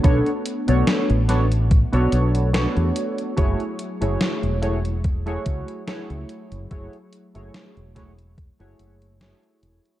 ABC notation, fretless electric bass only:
X:1
M:4/4
L:1/16
Q:"Swing 16ths" 1/4=72
K:F#m
V:1 name="Fretless electric bass" clef=bass
B,,, z2 B,,, z A,,,4 B,,, B,,,3 E,, z2 | F,,, z2 F,,, z E,,,4- E,,, C,, z2 C,, z F,,, | F,,, z2 F,,, z E,,,4 F,,, F,,,3 z E,,, z |]